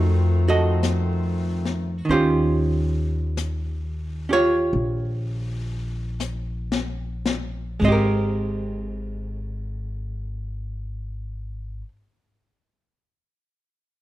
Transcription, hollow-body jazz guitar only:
0.00 2.05 F3 soft
0.00 2.09 A3 soft
0.00 0.48 D#4 soft
0.00 0.47 F#4 soft
0.48 2.06 F#4 medium
0.48 2.07 A4 medium
0.48 1.67 D#5 medium
2.05 7.81 D#3 soft
2.09 4.28 C#4 soft
2.09 4.30 F4 soft
2.09 4.29 G4 soft
2.09 4.26 C5 medium
4.29 4.33 C#4 soft
4.29 7.28 F4 medium
4.29 4.33 G4 soft
4.29 6.18 C#5 medium
4.34 7.28 G4 soft
7.80 11.83 G#3 medium
7.84 11.88 C4 medium
7.84 11.92 G4 medium
7.84 11.85 D#5 medium
7.92 11.96 A#4 medium

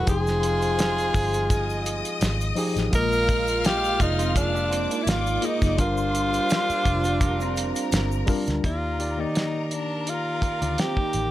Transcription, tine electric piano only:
0.00 0.10 A4 medium
0.06 1.09 F3 medium
0.06 1.09 D#4 medium
0.06 1.10 G#4 medium
0.06 1.10 G5 medium
2.56 2.83 F3 medium
2.56 2.83 D#4 medium
2.56 2.84 G4 medium
2.56 2.84 G#4 medium
2.91 3.96 G#3 medium
2.91 3.94 A#3 medium
2.91 3.95 F4 medium
2.91 3.96 D#5 medium
5.41 5.68 A#3 medium
5.41 5.69 F4 medium
5.41 5.69 G#4 medium
5.41 5.70 D#5 medium
5.77 6.80 G3 medium
5.77 6.80 D4 medium
5.77 6.81 F4 medium
5.77 6.82 A#4 medium
8.26 8.53 G3 medium
8.26 8.54 D4 medium
8.26 8.54 F4 medium
8.26 8.55 A#4 medium
8.62 8.89 D#3 medium
8.62 8.89 D#4 medium
8.62 8.90 G4 medium
8.62 8.91 D5 medium
8.98 9.12 D#3 medium
8.98 9.13 D#4 medium
8.98 9.13 G4 medium
8.98 9.14 D5 medium
9.17 10.19 D#3 medium
9.17 10.20 A#3 medium
9.17 10.20 G4 medium
9.17 10.21 D5 medium

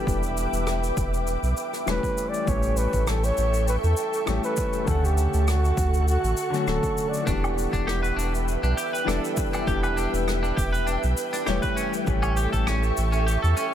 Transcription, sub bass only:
0.07 0.47 E1 loud
0.53 0.91 E1 loud
0.97 1.37 E1 medium
1.43 1.54 B1 medium
1.87 1.99 E1 medium
2.47 2.87 A1 medium
2.93 3.32 A1 loud
3.38 3.77 A1 medium
3.83 3.94 E2 medium
4.28 4.40 A1 medium
4.88 5.27 D2 loud
5.34 5.72 D2 loud
5.78 6.17 D2 medium
6.24 6.34 A1 medium
6.67 6.79 D1 medium
7.27 7.67 E1 loud
7.73 8.12 E1 loud
8.16 8.56 E1 medium
8.63 8.74 B1 medium
9.07 9.19 E1 medium
9.67 10.07 E1 medium
10.13 10.52 E1 loud
10.57 10.97 E1 medium
11.04 11.14 B1 medium
11.48 11.60 E1 medium
12.07 12.47 A1 medium
12.53 12.92 A1 loud
12.98 13.37 A1 medium
13.43 13.54 E2 medium

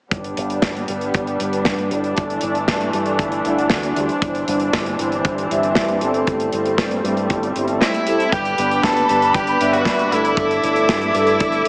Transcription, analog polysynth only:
0.37 0.86 G3 medium
0.37 0.86 D4 medium
0.37 0.86 G4 medium
0.37 0.86 B4 medium
0.37 0.86 D5 medium
0.89 1.37 G3 medium
0.89 1.37 D4 medium
0.89 1.37 G4 medium
0.89 1.37 B4 medium
0.89 1.37 D5 medium
1.40 1.88 G3 medium
1.40 1.88 D4 medium
1.40 1.88 G4 medium
1.40 1.88 B4 medium
1.40 1.88 G5 medium
1.91 2.39 G3 medium
1.91 2.39 D4 medium
1.91 2.39 E4 medium
1.91 2.39 A4 medium
1.91 2.39 D5 loud
2.42 2.91 G3 medium
2.42 2.91 D4 medium
2.42 2.91 E4 medium
2.42 2.91 A4 medium
2.94 3.42 G3 medium
2.94 3.42 D4 medium
2.94 3.42 E4 medium
2.94 3.42 A4 medium
2.94 3.42 D5 medium
3.45 3.93 G3 medium
3.45 3.93 D4 medium
3.45 3.93 E4 medium
3.45 3.93 A4 medium
3.45 3.93 F#5 medium
3.96 4.45 G3 medium
3.96 4.45 D4 medium
3.96 4.45 E4 medium
3.96 4.45 G4 medium
3.96 4.45 C5 loud
4.48 4.96 G3 medium
4.48 4.96 D4 medium
4.48 4.96 E4 medium
4.48 4.96 G4 medium
4.48 4.96 C5 medium
4.99 5.47 G3 medium
4.99 5.47 D4 medium
4.99 5.47 E4 medium
4.99 5.47 G4 medium
4.99 5.47 C5 medium
5.50 5.98 G3 medium
5.50 5.98 D4 medium
5.50 5.98 E4 medium
5.50 5.98 G4 medium
5.50 5.98 E5 medium
6.01 6.50 G3 medium
6.01 6.50 C4 medium
6.01 6.50 E4 medium
6.01 6.50 G4 medium
6.01 6.50 A4 loud
6.53 7.01 G3 medium
6.53 7.01 C4 medium
6.53 7.01 E4 medium
6.53 7.01 G4 medium
6.53 7.01 A4 medium
7.04 7.52 G3 medium
7.04 7.52 C4 medium
7.04 7.52 E4 medium
7.04 7.52 G4 medium
7.04 7.52 A4 medium
7.55 7.66 G3 medium
7.55 7.66 C4 medium
7.55 7.66 E4 medium
7.55 7.66 G4 medium
7.55 7.66 C5 medium
7.68 7.93 G3 medium
7.68 7.93 C4 medium
7.68 7.93 E4 medium
7.68 7.93 G4 medium
7.68 7.93 A4 medium
8.07 8.31 C4 medium
8.07 8.31 E4 medium
8.07 8.31 G4 medium
8.07 8.31 A4 medium
8.58 9.06 G2 medium
8.58 9.06 B3 medium
8.58 9.06 D4 medium
8.58 9.06 G4 medium
8.58 9.06 B4 medium
9.09 9.57 G2 medium
9.09 9.58 B3 medium
9.09 9.58 D4 medium
9.09 9.58 G4 medium
9.09 9.57 B4 medium
9.61 10.09 G2 medium
9.61 10.09 G3 medium
9.61 10.09 B3 medium
9.61 10.09 D4 medium
9.61 10.09 E5 medium
10.12 10.60 G2 medium
10.12 10.60 A3 medium
10.12 10.60 D4 medium
10.12 10.60 E4 medium
10.12 10.60 A4 loud
10.63 11.11 G2 medium
10.63 11.11 A3 medium
10.63 11.11 D4 medium
10.63 11.11 E4 medium
10.63 11.11 A4 medium
11.14 11.63 G2 medium
11.14 11.63 A3 medium
11.14 11.63 D4 medium
11.14 11.63 E4 medium
11.14 11.63 A4 medium

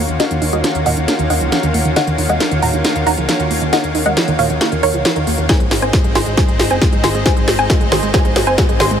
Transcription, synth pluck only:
0.20 0.41 F#4 medium
0.20 0.41 D#5 loud
0.53 0.74 F#4 medium
0.53 0.74 D#5 loud
0.86 1.15 D#5 medium
0.86 1.15 F#5 medium
1.30 1.51 D#5 medium
1.30 1.51 F#5 loud
1.96 2.18 D#5 medium
1.96 2.18 F#5 medium
2.29 2.51 D#5 medium
2.29 2.51 F#5 medium
2.62 2.91 F#5 medium
2.62 2.91 A#5 loud
3.07 3.28 F#5 medium
3.07 3.28 A#5 loud
3.73 3.94 D#5 medium
3.73 3.94 F#5 medium
4.06 4.27 D#5 medium
4.06 4.27 F#5 loud
4.39 4.67 C#5 medium
4.39 4.67 F5 medium
4.83 5.04 A#4 medium
4.83 5.04 C#5 loud
5.49 5.71 C5 medium
5.49 5.71 G#5 medium
5.82 6.04 C5 medium
5.82 6.04 G#5 medium
6.15 6.36 G#5 medium
6.15 6.36 C6 medium
6.38 6.59 C5 medium
6.38 6.59 G#5 medium
6.71 6.92 C5 medium
6.71 6.92 G#5 medium
7.04 7.24 G#5 medium
7.04 7.24 C6 medium
7.26 7.47 C5 medium
7.26 7.47 G#5 medium
7.59 7.80 C5 medium
7.59 7.80 G#5 medium
7.92 8.12 G#5 medium
7.92 8.12 C6 medium
8.14 8.35 C5 medium
8.14 8.35 G#5 loud
8.47 8.68 C5 medium
8.47 8.68 G#5 medium
8.80 9.00 G#5 medium
8.80 9.00 C6 medium

